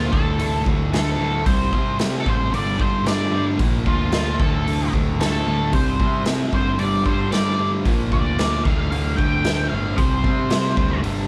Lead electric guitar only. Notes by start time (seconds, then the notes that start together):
Already playing: F4
0.12 A4
0.93 A4
1.46 C5
2.20 A4
2.30 C5
2.54 D5
2.81 C5
3.07 D5
3.87 F4
4.40 A4
5.21 A4
5.74 C5
6.55 C5
6.80 D5
7.06 C5
7.32 D5
8.13 D5
8.64 F5
8.78 F5
8.91 F5
9.16 G5
9.69 F5
9.97 C5